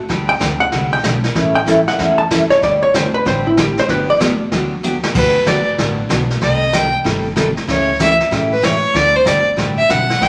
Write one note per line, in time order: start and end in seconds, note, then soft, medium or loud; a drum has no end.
0.09 0.34 D2 medium
0.09 0.30 D3 medium
0.09 0.30 G3 medium
0.09 0.30 C4 medium
0.09 0.30 D4 medium
0.09 0.30 G4 medium
0.09 brush sweep medium
0.09 kick soft
0.09 snare soft
0.29 0.58 G5 loud
0.40 0.68 D2 medium
0.40 0.52 D3 medium
0.40 0.52 G3 medium
0.40 0.52 C4 medium
0.40 0.52 D4 medium
0.40 0.52 G4 medium
0.40 kick soft
0.40 snare medium
0.40 hi-hat pedal medium
0.60 0.90 F#5 loud
0.72 0.99 C2 medium
0.72 0.93 D3 medium
0.72 0.94 G3 medium
0.72 0.94 C4 medium
0.72 0.94 D4 medium
0.72 0.94 G4 medium
0.72 brush sweep medium
0.72 kick soft
0.72 snare soft
0.93 1.04 G5 loud
1.03 1.31 B1 medium
1.03 1.15 D3 medium
1.03 1.16 G3 medium
1.03 1.16 C4 medium
1.03 1.16 D4 medium
1.03 1.16 G4 medium
1.03 kick soft
1.03 snare medium
1.03 hi-hat pedal medium
1.24 snare soft
1.35 1.86 A1 medium
1.35 1.56 E3 medium
1.35 1.56 G3 medium
1.35 1.56 C#4 medium
1.35 1.57 E4 medium
1.35 1.57 A4 medium
1.35 brush sweep medium
1.35 kick soft
1.35 snare soft
1.55 1.85 G5 loud
1.66 1.78 E3 medium
1.66 1.78 G3 medium
1.66 1.79 C#4 medium
1.66 1.79 E4 medium
1.66 1.79 A4 medium
1.66 kick soft
1.66 snare medium
1.66 hi-hat pedal medium
1.87 2.17 F#5 loud
1.87 snare soft
1.98 2.49 E2 medium
1.98 2.19 E3 medium
1.98 2.20 G3 medium
1.98 2.20 C#4 medium
1.98 2.20 E4 medium
1.98 2.20 A4 medium
1.98 brush sweep soft
1.98 kick soft
1.98 snare medium
2.18 2.25 A5 loud
2.30 2.42 E3 medium
2.30 2.42 G3 medium
2.30 2.42 C#4 medium
2.30 2.42 E4 medium
2.30 2.42 A4 medium
2.30 kick soft
2.30 snare medium
2.30 hi-hat pedal medium
2.50 2.62 C#5 loud
2.50 snare soft
2.62 3.13 D2 medium
2.62 2.83 D3 medium
2.62 2.83 G3 medium
2.62 2.83 C4 medium
2.62 2.83 D4 medium
2.62 2.83 G4 medium
2.62 2.82 D5 loud
2.62 brush sweep medium
2.62 kick soft
2.62 snare soft
2.83 2.94 C#5 loud
2.94 3.05 D3 medium
2.94 3.05 G3 medium
2.94 3.05 C4 medium
2.94 3.06 D4 medium
2.94 3.06 G4 medium
2.94 3.14 C5 medium
2.94 kick soft
2.94 snare medium
2.94 hi-hat pedal medium
3.14 3.25 B4 loud
3.25 3.76 A1 medium
3.25 3.46 D3 medium
3.25 3.46 G3 medium
3.25 3.47 C4 medium
3.25 3.47 D4 medium
3.25 3.47 G4 medium
3.25 3.46 C5 medium
3.25 brush sweep soft
3.25 kick soft
3.25 snare soft
3.47 3.60 E4 medium
3.57 3.68 D3 medium
3.57 3.69 G3 medium
3.57 3.69 C4 medium
3.57 3.69 D4 medium
3.57 3.69 G4 medium
3.57 3.78 G4 medium
3.57 kick soft
3.57 snare medium
3.57 hi-hat pedal medium
3.77 3.90 C5 loud
3.77 snare soft
3.88 4.39 G1 medium
3.88 4.09 D3 medium
3.88 4.09 F#3 medium
3.88 4.10 B3 medium
3.88 4.10 D4 medium
3.88 4.10 G4 medium
3.88 4.09 B4 loud
3.88 brush sweep medium
3.88 kick soft
3.88 snare soft
4.10 4.16 D5 loud
4.19 4.31 D3 medium
4.19 4.32 F#3 medium
4.19 4.32 B3 medium
4.19 4.32 D4 medium
4.19 4.32 G4 medium
4.19 kick soft
4.19 snare medium
4.19 hi-hat pedal medium
4.52 5.02 D2 medium
4.52 4.73 D3 medium
4.52 4.73 F#3 medium
4.52 4.73 B3 medium
4.52 4.73 D4 medium
4.52 4.73 G4 medium
4.52 brush sweep medium
4.52 kick soft
4.52 snare medium
4.83 4.95 D3 medium
4.83 4.95 F#3 medium
4.83 4.95 B3 medium
4.83 4.95 D4 medium
4.83 4.96 G4 medium
4.83 hi-hat pedal medium
5.03 snare medium
5.14 5.66 G1 medium
5.14 5.36 D3 medium
5.14 5.36 F#3 medium
5.14 5.36 B3 medium
5.14 5.36 D4 medium
5.14 5.36 G4 medium
5.14 5.49 B4 medium
5.14 brush sweep medium
5.14 kick medium
5.14 snare soft
5.14 crash medium
5.46 5.58 D3 medium
5.46 5.58 F#3 medium
5.46 5.58 B3 medium
5.46 5.58 D4 medium
5.46 5.58 G4 medium
5.46 5.67 D5 medium
5.46 kick soft
5.46 snare medium
5.46 hi-hat pedal medium
5.78 6.05 A1 medium
5.78 5.99 D3 medium
5.78 6.00 F#3 medium
5.78 6.00 B3 medium
5.78 6.00 D4 medium
5.78 6.00 G4 medium
5.78 brush sweep soft
5.78 kick soft
5.78 snare medium
6.09 6.37 B1 medium
6.09 6.21 D3 medium
6.09 6.21 F#3 medium
6.09 6.21 B3 medium
6.09 6.21 D4 medium
6.09 6.22 G4 medium
6.09 kick soft
6.09 snare medium
6.09 hi-hat pedal medium
6.30 snare soft
6.40 6.92 C2 loud
6.40 6.62 C3 medium
6.40 6.62 D#3 medium
6.40 6.62 G3 medium
6.40 6.62 C4 medium
6.40 6.63 G4 medium
6.40 6.63 A4 medium
6.40 6.76 D#5 medium
6.40 brush sweep medium
6.40 kick soft
6.40 snare soft
6.72 6.84 C3 medium
6.72 6.85 D#3 medium
6.72 6.85 G3 medium
6.72 6.85 C4 medium
6.72 6.85 G4 medium
6.72 6.85 A4 medium
6.72 6.94 G5 medium
6.72 kick soft
6.72 snare medium
6.72 hi-hat pedal medium
7.04 7.56 G1 medium
7.04 7.26 C3 medium
7.04 7.26 D#3 medium
7.04 7.26 G3 medium
7.04 7.26 C4 medium
7.04 7.26 G4 medium
7.04 7.26 A4 medium
7.04 brush sweep soft
7.04 kick soft
7.04 snare soft
7.36 7.48 C3 medium
7.36 7.48 D#3 medium
7.36 7.48 G3 medium
7.36 7.48 C4 medium
7.36 7.48 G4 medium
7.36 7.48 A4 medium
7.36 kick soft
7.36 snare medium
7.36 hi-hat pedal medium
7.57 snare soft
7.67 8.19 C#2 medium
7.67 7.89 C#3 medium
7.67 7.89 E3 medium
7.67 7.89 A3 medium
7.67 7.89 C#4 medium
7.67 7.89 G4 medium
7.67 7.98 C#5 medium
7.67 brush sweep medium
7.67 kick soft
7.67 snare medium
7.99 8.11 C#3 medium
7.99 8.11 E3 medium
7.99 8.11 A3 medium
7.99 8.11 C#4 medium
7.99 8.11 G4 medium
7.99 8.13 E5 loud
7.99 kick soft
7.99 snare medium
7.99 hi-hat pedal medium
8.20 snare soft
8.31 8.82 A2 medium
8.31 8.52 C#3 medium
8.31 8.52 E3 medium
8.31 8.52 A3 medium
8.31 8.52 C#4 medium
8.31 8.52 G4 medium
8.31 brush sweep soft
8.31 kick soft
8.31 snare soft
8.53 8.66 B4 medium
8.62 8.74 C#3 medium
8.62 8.74 E3 medium
8.62 8.74 A3 medium
8.62 8.74 C#4 medium
8.62 8.74 G4 medium
8.62 8.97 C#5 medium
8.62 kick soft
8.62 snare medium
8.62 hi-hat pedal medium
8.94 9.20 D2 medium
8.94 9.15 D3 medium
8.94 9.15 G3 medium
8.94 9.15 C4 medium
8.94 9.16 D4 medium
8.94 9.16 G4 medium
8.94 9.17 D5 loud
8.94 brush sweep medium
8.94 kick soft
8.94 snare soft
9.16 9.29 C5 medium
9.25 9.53 G1 medium
9.25 9.37 D3 medium
9.25 9.37 G3 medium
9.25 9.37 C4 medium
9.25 9.37 D4 medium
9.25 9.38 G4 medium
9.25 9.47 D5 medium
9.25 kick soft
9.25 snare medium
9.25 hi-hat pedal medium
9.56 9.84 A1 medium
9.56 9.78 D3 medium
9.56 9.78 G3 medium
9.56 9.78 C4 medium
9.56 9.78 D4 medium
9.56 9.79 G4 medium
9.56 brush sweep medium
9.56 kick soft
9.56 snare soft
9.78 9.92 E5 medium
9.89 10.16 B1 medium
9.89 10.01 D3 medium
9.89 10.01 G3 medium
9.89 10.01 C4 medium
9.89 10.01 D4 medium
9.89 10.01 G4 medium
9.89 10.24 F#5 loud
9.89 kick soft
9.89 snare medium
9.89 hi-hat pedal medium
10.10 snare soft
10.20 10.28 C2 medium
10.20 10.28 C3 medium
10.20 10.28 G3 medium
10.20 10.28 C4 medium
10.20 10.28 D#4 medium
10.20 10.28 G4 medium
10.20 10.28 G5 loud
10.20 brush sweep soft
10.20 kick soft
10.20 snare soft